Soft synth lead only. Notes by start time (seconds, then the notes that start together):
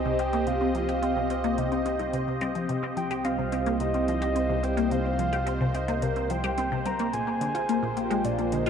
Already playing: D#5
0.20 G5
0.48 F5
1.59 D#5
2.97 G5
3.25 F5
3.81 D#5
4.08 D#5
4.64 G5
4.92 F5
5.75 D#5
6.03 A#4
6.30 G5
6.86 A#5
7.13 G#5
7.97 G5
8.25 D5
8.52 D#5